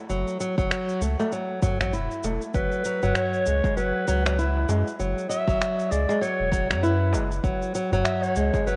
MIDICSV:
0, 0, Header, 1, 6, 480
1, 0, Start_track
1, 0, Tempo, 612245
1, 75, Time_signature, 4, 2, 24, 8
1, 6869, End_track
2, 0, Start_track
2, 0, Title_t, "Clarinet"
2, 0, Program_c, 0, 71
2, 1997, Note_on_c, 0, 71, 98
2, 2477, Note_on_c, 0, 73, 109
2, 2489, Note_off_c, 0, 71, 0
2, 2948, Note_off_c, 0, 73, 0
2, 2953, Note_on_c, 0, 71, 92
2, 3643, Note_off_c, 0, 71, 0
2, 4151, Note_on_c, 0, 76, 112
2, 4632, Note_on_c, 0, 74, 94
2, 4644, Note_off_c, 0, 76, 0
2, 4865, Note_off_c, 0, 74, 0
2, 4870, Note_on_c, 0, 73, 99
2, 5321, Note_off_c, 0, 73, 0
2, 5349, Note_on_c, 0, 71, 71
2, 5706, Note_off_c, 0, 71, 0
2, 6307, Note_on_c, 0, 76, 109
2, 6446, Note_on_c, 0, 73, 104
2, 6457, Note_off_c, 0, 76, 0
2, 6787, Note_off_c, 0, 73, 0
2, 6791, Note_on_c, 0, 71, 107
2, 6869, Note_off_c, 0, 71, 0
2, 6869, End_track
3, 0, Start_track
3, 0, Title_t, "Nylon-string guitar"
3, 0, Program_c, 1, 24
3, 75, Note_on_c, 1, 54, 72
3, 305, Note_off_c, 1, 54, 0
3, 317, Note_on_c, 1, 54, 69
3, 444, Note_off_c, 1, 54, 0
3, 454, Note_on_c, 1, 54, 100
3, 784, Note_off_c, 1, 54, 0
3, 796, Note_on_c, 1, 57, 68
3, 926, Note_off_c, 1, 57, 0
3, 936, Note_on_c, 1, 57, 88
3, 1025, Note_off_c, 1, 57, 0
3, 1036, Note_on_c, 1, 54, 75
3, 1262, Note_off_c, 1, 54, 0
3, 1272, Note_on_c, 1, 54, 89
3, 1405, Note_off_c, 1, 54, 0
3, 1414, Note_on_c, 1, 54, 88
3, 1505, Note_off_c, 1, 54, 0
3, 1513, Note_on_c, 1, 64, 81
3, 1744, Note_off_c, 1, 64, 0
3, 1758, Note_on_c, 1, 57, 66
3, 1890, Note_off_c, 1, 57, 0
3, 1995, Note_on_c, 1, 54, 76
3, 2225, Note_off_c, 1, 54, 0
3, 2237, Note_on_c, 1, 54, 74
3, 2365, Note_off_c, 1, 54, 0
3, 2374, Note_on_c, 1, 54, 89
3, 2705, Note_off_c, 1, 54, 0
3, 2713, Note_on_c, 1, 56, 68
3, 2847, Note_off_c, 1, 56, 0
3, 2855, Note_on_c, 1, 56, 92
3, 2945, Note_off_c, 1, 56, 0
3, 2954, Note_on_c, 1, 54, 77
3, 3185, Note_off_c, 1, 54, 0
3, 3195, Note_on_c, 1, 54, 92
3, 3326, Note_off_c, 1, 54, 0
3, 3335, Note_on_c, 1, 54, 90
3, 3425, Note_off_c, 1, 54, 0
3, 3437, Note_on_c, 1, 64, 80
3, 3666, Note_off_c, 1, 64, 0
3, 3672, Note_on_c, 1, 56, 71
3, 3807, Note_off_c, 1, 56, 0
3, 3915, Note_on_c, 1, 54, 76
3, 4140, Note_off_c, 1, 54, 0
3, 4150, Note_on_c, 1, 54, 73
3, 4282, Note_off_c, 1, 54, 0
3, 4292, Note_on_c, 1, 54, 93
3, 4623, Note_off_c, 1, 54, 0
3, 4634, Note_on_c, 1, 56, 72
3, 4764, Note_off_c, 1, 56, 0
3, 4773, Note_on_c, 1, 56, 94
3, 4864, Note_off_c, 1, 56, 0
3, 4871, Note_on_c, 1, 54, 83
3, 5098, Note_off_c, 1, 54, 0
3, 5108, Note_on_c, 1, 54, 92
3, 5245, Note_off_c, 1, 54, 0
3, 5255, Note_on_c, 1, 54, 95
3, 5345, Note_off_c, 1, 54, 0
3, 5355, Note_on_c, 1, 64, 85
3, 5585, Note_off_c, 1, 64, 0
3, 5594, Note_on_c, 1, 56, 70
3, 5728, Note_off_c, 1, 56, 0
3, 5834, Note_on_c, 1, 54, 81
3, 6065, Note_off_c, 1, 54, 0
3, 6076, Note_on_c, 1, 54, 76
3, 6207, Note_off_c, 1, 54, 0
3, 6217, Note_on_c, 1, 54, 99
3, 6546, Note_off_c, 1, 54, 0
3, 6557, Note_on_c, 1, 56, 70
3, 6690, Note_off_c, 1, 56, 0
3, 6698, Note_on_c, 1, 56, 89
3, 6787, Note_off_c, 1, 56, 0
3, 6796, Note_on_c, 1, 54, 79
3, 6869, Note_off_c, 1, 54, 0
3, 6869, End_track
4, 0, Start_track
4, 0, Title_t, "Sub bass"
4, 0, Program_c, 2, 38
4, 79, Note_on_c, 2, 30, 91
4, 192, Note_off_c, 2, 30, 0
4, 456, Note_on_c, 2, 30, 86
4, 537, Note_off_c, 2, 30, 0
4, 795, Note_on_c, 2, 37, 80
4, 910, Note_off_c, 2, 37, 0
4, 1415, Note_on_c, 2, 33, 87
4, 1514, Note_on_c, 2, 28, 76
4, 1526, Note_off_c, 2, 33, 0
4, 1629, Note_off_c, 2, 28, 0
4, 1755, Note_on_c, 2, 28, 87
4, 1870, Note_off_c, 2, 28, 0
4, 1994, Note_on_c, 2, 30, 93
4, 2109, Note_off_c, 2, 30, 0
4, 2376, Note_on_c, 2, 30, 96
4, 2457, Note_off_c, 2, 30, 0
4, 2723, Note_on_c, 2, 37, 81
4, 2834, Note_off_c, 2, 37, 0
4, 2962, Note_on_c, 2, 30, 95
4, 3073, Note_off_c, 2, 30, 0
4, 3202, Note_on_c, 2, 37, 90
4, 3650, Note_off_c, 2, 37, 0
4, 3675, Note_on_c, 2, 42, 87
4, 3790, Note_off_c, 2, 42, 0
4, 3920, Note_on_c, 2, 30, 90
4, 4032, Note_off_c, 2, 30, 0
4, 4293, Note_on_c, 2, 30, 92
4, 4376, Note_off_c, 2, 30, 0
4, 4640, Note_on_c, 2, 37, 86
4, 4753, Note_off_c, 2, 37, 0
4, 5018, Note_on_c, 2, 28, 96
4, 5258, Note_on_c, 2, 42, 92
4, 5269, Note_off_c, 2, 28, 0
4, 5606, Note_on_c, 2, 30, 81
4, 5617, Note_off_c, 2, 42, 0
4, 5804, Note_off_c, 2, 30, 0
4, 5831, Note_on_c, 2, 30, 91
4, 5948, Note_off_c, 2, 30, 0
4, 6217, Note_on_c, 2, 30, 92
4, 6298, Note_off_c, 2, 30, 0
4, 6558, Note_on_c, 2, 37, 84
4, 6672, Note_off_c, 2, 37, 0
4, 6795, Note_on_c, 2, 30, 88
4, 6869, Note_off_c, 2, 30, 0
4, 6869, End_track
5, 0, Start_track
5, 0, Title_t, "Darbuka"
5, 938, Note_on_c, 9, 63, 62
5, 1016, Note_off_c, 9, 63, 0
5, 1275, Note_on_c, 9, 64, 81
5, 1353, Note_off_c, 9, 64, 0
5, 1421, Note_on_c, 9, 62, 43
5, 1499, Note_off_c, 9, 62, 0
5, 1758, Note_on_c, 9, 63, 51
5, 1836, Note_off_c, 9, 63, 0
5, 2375, Note_on_c, 9, 64, 68
5, 2454, Note_off_c, 9, 64, 0
5, 2858, Note_on_c, 9, 63, 52
5, 2936, Note_off_c, 9, 63, 0
5, 3333, Note_on_c, 9, 62, 46
5, 3336, Note_on_c, 9, 63, 59
5, 3411, Note_off_c, 9, 62, 0
5, 3414, Note_off_c, 9, 63, 0
5, 3580, Note_on_c, 9, 62, 51
5, 3658, Note_off_c, 9, 62, 0
5, 3676, Note_on_c, 9, 63, 61
5, 3754, Note_off_c, 9, 63, 0
5, 4776, Note_on_c, 9, 63, 53
5, 4855, Note_off_c, 9, 63, 0
5, 5256, Note_on_c, 9, 62, 50
5, 5335, Note_off_c, 9, 62, 0
5, 5588, Note_on_c, 9, 63, 67
5, 5667, Note_off_c, 9, 63, 0
5, 6211, Note_on_c, 9, 64, 74
5, 6289, Note_off_c, 9, 64, 0
5, 6690, Note_on_c, 9, 63, 54
5, 6768, Note_off_c, 9, 63, 0
5, 6869, End_track
6, 0, Start_track
6, 0, Title_t, "Drums"
6, 77, Note_on_c, 9, 82, 44
6, 155, Note_off_c, 9, 82, 0
6, 218, Note_on_c, 9, 82, 29
6, 296, Note_off_c, 9, 82, 0
6, 319, Note_on_c, 9, 82, 78
6, 397, Note_off_c, 9, 82, 0
6, 455, Note_on_c, 9, 36, 96
6, 459, Note_on_c, 9, 82, 29
6, 533, Note_off_c, 9, 36, 0
6, 538, Note_off_c, 9, 82, 0
6, 559, Note_on_c, 9, 26, 76
6, 559, Note_on_c, 9, 82, 44
6, 637, Note_off_c, 9, 26, 0
6, 638, Note_off_c, 9, 82, 0
6, 696, Note_on_c, 9, 82, 31
6, 774, Note_off_c, 9, 82, 0
6, 796, Note_on_c, 9, 82, 74
6, 874, Note_off_c, 9, 82, 0
6, 937, Note_on_c, 9, 82, 34
6, 1015, Note_off_c, 9, 82, 0
6, 1036, Note_on_c, 9, 82, 40
6, 1114, Note_off_c, 9, 82, 0
6, 1273, Note_on_c, 9, 36, 102
6, 1273, Note_on_c, 9, 82, 80
6, 1351, Note_off_c, 9, 36, 0
6, 1351, Note_off_c, 9, 82, 0
6, 1416, Note_on_c, 9, 26, 67
6, 1416, Note_on_c, 9, 82, 33
6, 1494, Note_off_c, 9, 26, 0
6, 1495, Note_off_c, 9, 82, 0
6, 1514, Note_on_c, 9, 82, 40
6, 1592, Note_off_c, 9, 82, 0
6, 1655, Note_on_c, 9, 82, 27
6, 1733, Note_off_c, 9, 82, 0
6, 1751, Note_on_c, 9, 82, 78
6, 1830, Note_off_c, 9, 82, 0
6, 1894, Note_on_c, 9, 82, 33
6, 1972, Note_off_c, 9, 82, 0
6, 1993, Note_on_c, 9, 82, 43
6, 1994, Note_on_c, 9, 36, 107
6, 2071, Note_off_c, 9, 82, 0
6, 2072, Note_off_c, 9, 36, 0
6, 2130, Note_on_c, 9, 82, 29
6, 2208, Note_off_c, 9, 82, 0
6, 2231, Note_on_c, 9, 82, 74
6, 2310, Note_off_c, 9, 82, 0
6, 2374, Note_on_c, 9, 82, 31
6, 2452, Note_off_c, 9, 82, 0
6, 2472, Note_on_c, 9, 26, 73
6, 2472, Note_on_c, 9, 82, 46
6, 2550, Note_off_c, 9, 26, 0
6, 2551, Note_off_c, 9, 82, 0
6, 2614, Note_on_c, 9, 82, 29
6, 2693, Note_off_c, 9, 82, 0
6, 2713, Note_on_c, 9, 82, 72
6, 2792, Note_off_c, 9, 82, 0
6, 2853, Note_on_c, 9, 36, 107
6, 2857, Note_on_c, 9, 82, 31
6, 2931, Note_off_c, 9, 36, 0
6, 2935, Note_off_c, 9, 82, 0
6, 2957, Note_on_c, 9, 82, 40
6, 3035, Note_off_c, 9, 82, 0
6, 3196, Note_on_c, 9, 82, 77
6, 3275, Note_off_c, 9, 82, 0
6, 3341, Note_on_c, 9, 26, 69
6, 3341, Note_on_c, 9, 82, 29
6, 3419, Note_off_c, 9, 26, 0
6, 3420, Note_off_c, 9, 82, 0
6, 3440, Note_on_c, 9, 82, 41
6, 3519, Note_off_c, 9, 82, 0
6, 3677, Note_on_c, 9, 82, 73
6, 3756, Note_off_c, 9, 82, 0
6, 3822, Note_on_c, 9, 82, 29
6, 3900, Note_off_c, 9, 82, 0
6, 3918, Note_on_c, 9, 82, 42
6, 3997, Note_off_c, 9, 82, 0
6, 4063, Note_on_c, 9, 82, 26
6, 4142, Note_off_c, 9, 82, 0
6, 4160, Note_on_c, 9, 82, 76
6, 4238, Note_off_c, 9, 82, 0
6, 4293, Note_on_c, 9, 36, 94
6, 4303, Note_on_c, 9, 82, 28
6, 4372, Note_off_c, 9, 36, 0
6, 4381, Note_off_c, 9, 82, 0
6, 4403, Note_on_c, 9, 26, 74
6, 4403, Note_on_c, 9, 82, 43
6, 4481, Note_off_c, 9, 26, 0
6, 4481, Note_off_c, 9, 82, 0
6, 4542, Note_on_c, 9, 82, 29
6, 4621, Note_off_c, 9, 82, 0
6, 4641, Note_on_c, 9, 82, 70
6, 4719, Note_off_c, 9, 82, 0
6, 4783, Note_on_c, 9, 82, 31
6, 4862, Note_off_c, 9, 82, 0
6, 4881, Note_on_c, 9, 82, 39
6, 4960, Note_off_c, 9, 82, 0
6, 5113, Note_on_c, 9, 36, 90
6, 5119, Note_on_c, 9, 82, 77
6, 5191, Note_off_c, 9, 36, 0
6, 5198, Note_off_c, 9, 82, 0
6, 5258, Note_on_c, 9, 26, 71
6, 5258, Note_on_c, 9, 82, 30
6, 5337, Note_off_c, 9, 26, 0
6, 5337, Note_off_c, 9, 82, 0
6, 5360, Note_on_c, 9, 82, 40
6, 5438, Note_off_c, 9, 82, 0
6, 5599, Note_on_c, 9, 82, 70
6, 5677, Note_off_c, 9, 82, 0
6, 5737, Note_on_c, 9, 82, 31
6, 5816, Note_off_c, 9, 82, 0
6, 5832, Note_on_c, 9, 36, 109
6, 5836, Note_on_c, 9, 82, 39
6, 5911, Note_off_c, 9, 36, 0
6, 5914, Note_off_c, 9, 82, 0
6, 5976, Note_on_c, 9, 82, 28
6, 6054, Note_off_c, 9, 82, 0
6, 6075, Note_on_c, 9, 82, 70
6, 6154, Note_off_c, 9, 82, 0
6, 6218, Note_on_c, 9, 82, 28
6, 6296, Note_off_c, 9, 82, 0
6, 6314, Note_on_c, 9, 26, 77
6, 6314, Note_on_c, 9, 82, 42
6, 6392, Note_off_c, 9, 26, 0
6, 6392, Note_off_c, 9, 82, 0
6, 6454, Note_on_c, 9, 82, 29
6, 6533, Note_off_c, 9, 82, 0
6, 6551, Note_on_c, 9, 82, 66
6, 6629, Note_off_c, 9, 82, 0
6, 6692, Note_on_c, 9, 36, 100
6, 6694, Note_on_c, 9, 82, 30
6, 6770, Note_off_c, 9, 36, 0
6, 6773, Note_off_c, 9, 82, 0
6, 6798, Note_on_c, 9, 82, 41
6, 6869, Note_off_c, 9, 82, 0
6, 6869, End_track
0, 0, End_of_file